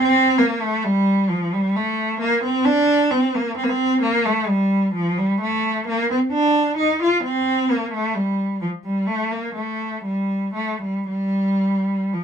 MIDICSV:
0, 0, Header, 1, 2, 480
1, 0, Start_track
1, 0, Tempo, 910470
1, 1883, Time_signature, 4, 2, 24, 8
1, 2360, Tempo, 921659
1, 4760, Tempo, 978793
1, 5240, Tempo, 1036269
1, 6248, End_track
2, 0, Start_track
2, 0, Title_t, "Cello"
2, 0, Program_c, 0, 42
2, 0, Note_on_c, 0, 60, 107
2, 195, Note_off_c, 0, 60, 0
2, 201, Note_on_c, 0, 58, 89
2, 323, Note_off_c, 0, 58, 0
2, 327, Note_on_c, 0, 57, 87
2, 442, Note_on_c, 0, 55, 96
2, 446, Note_off_c, 0, 57, 0
2, 682, Note_on_c, 0, 53, 83
2, 684, Note_off_c, 0, 55, 0
2, 803, Note_off_c, 0, 53, 0
2, 806, Note_on_c, 0, 55, 82
2, 925, Note_off_c, 0, 55, 0
2, 928, Note_on_c, 0, 57, 84
2, 1164, Note_off_c, 0, 57, 0
2, 1164, Note_on_c, 0, 58, 90
2, 1280, Note_off_c, 0, 58, 0
2, 1288, Note_on_c, 0, 60, 90
2, 1398, Note_on_c, 0, 62, 104
2, 1402, Note_off_c, 0, 60, 0
2, 1640, Note_off_c, 0, 62, 0
2, 1640, Note_on_c, 0, 60, 89
2, 1761, Note_off_c, 0, 60, 0
2, 1766, Note_on_c, 0, 58, 84
2, 1877, Note_on_c, 0, 60, 90
2, 1884, Note_off_c, 0, 58, 0
2, 1914, Note_off_c, 0, 60, 0
2, 1918, Note_on_c, 0, 58, 84
2, 1949, Note_on_c, 0, 60, 99
2, 1953, Note_off_c, 0, 58, 0
2, 2119, Note_off_c, 0, 60, 0
2, 2121, Note_on_c, 0, 58, 91
2, 2237, Note_off_c, 0, 58, 0
2, 2245, Note_on_c, 0, 57, 84
2, 2362, Note_off_c, 0, 57, 0
2, 2362, Note_on_c, 0, 55, 88
2, 2601, Note_off_c, 0, 55, 0
2, 2603, Note_on_c, 0, 53, 80
2, 2721, Note_off_c, 0, 53, 0
2, 2727, Note_on_c, 0, 55, 85
2, 2846, Note_off_c, 0, 55, 0
2, 2848, Note_on_c, 0, 57, 89
2, 3082, Note_off_c, 0, 57, 0
2, 3090, Note_on_c, 0, 58, 87
2, 3205, Note_off_c, 0, 58, 0
2, 3208, Note_on_c, 0, 60, 77
2, 3250, Note_off_c, 0, 60, 0
2, 3324, Note_on_c, 0, 62, 87
2, 3556, Note_off_c, 0, 62, 0
2, 3560, Note_on_c, 0, 63, 86
2, 3677, Note_off_c, 0, 63, 0
2, 3690, Note_on_c, 0, 65, 83
2, 3799, Note_on_c, 0, 60, 96
2, 3803, Note_off_c, 0, 65, 0
2, 4035, Note_off_c, 0, 60, 0
2, 4042, Note_on_c, 0, 58, 82
2, 4158, Note_on_c, 0, 57, 82
2, 4161, Note_off_c, 0, 58, 0
2, 4274, Note_on_c, 0, 55, 82
2, 4275, Note_off_c, 0, 57, 0
2, 4514, Note_off_c, 0, 55, 0
2, 4515, Note_on_c, 0, 53, 75
2, 4557, Note_off_c, 0, 53, 0
2, 4636, Note_on_c, 0, 55, 72
2, 4751, Note_on_c, 0, 57, 83
2, 4755, Note_off_c, 0, 55, 0
2, 4871, Note_off_c, 0, 57, 0
2, 4871, Note_on_c, 0, 58, 78
2, 4990, Note_on_c, 0, 57, 70
2, 4992, Note_off_c, 0, 58, 0
2, 5229, Note_on_c, 0, 55, 70
2, 5231, Note_off_c, 0, 57, 0
2, 5464, Note_off_c, 0, 55, 0
2, 5464, Note_on_c, 0, 57, 71
2, 5585, Note_off_c, 0, 57, 0
2, 5592, Note_on_c, 0, 55, 68
2, 5702, Note_off_c, 0, 55, 0
2, 5708, Note_on_c, 0, 55, 87
2, 6185, Note_off_c, 0, 55, 0
2, 6200, Note_on_c, 0, 53, 67
2, 6248, Note_off_c, 0, 53, 0
2, 6248, End_track
0, 0, End_of_file